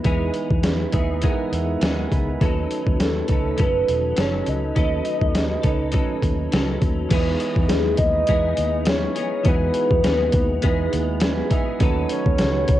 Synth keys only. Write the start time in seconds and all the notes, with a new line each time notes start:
Already playing: G#3 D#4 E4 B4
0.04 G#3 D#4 E4 B4
0.91 G#3 D#4 E4 B4 E5
1.23 G#3 D#4 E4 A#4 F#5
1.32 B4
1.54 E5
1.84 G#5
2.12 B5
2.41 A3 C#4 D#4 B4
3.28 A3 C#4 D#4 B4
3.58 A3 C#4 D#4 A4
4.76 A3 C#4 D#4 B4
5.63 A3 C#4 D#4 B4
5.93 A3 C#4 D#4 B4
7.11 G#3 B3 D#4 E4 B4
8.28 G#3 B3 D#4 E4 B4
9.45 G#3 B3 D#4 E4 F#4
10.62 G#3 B3 D#4 E4 B4
11.22 G#5
11.52 E5
11.80 A3 C#4 D#4 F#4 B4